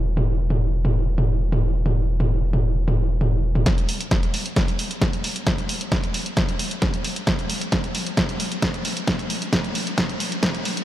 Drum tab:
HH |----------------|----------------|xxoxxxoxxxoxxxox|xxoxxxoxxxoxxxox|
SD |----------------|----------------|o---o---o---o---|o---o---o---o---|
T2 |-o--o--o--o--o--|o--o--o--o--o--o|----------------|----------------|
BD |----------------|----------------|o---o---o---o---|o---o---o---o---|

HH |xxoxxxoxxxoxxxox|xxoxxxoxxxoxxxox|
SD |o---o---o---o---|o---o---o---o---|
T2 |----------------|----------------|
BD |o---o---o---o---|o---o---o---o---|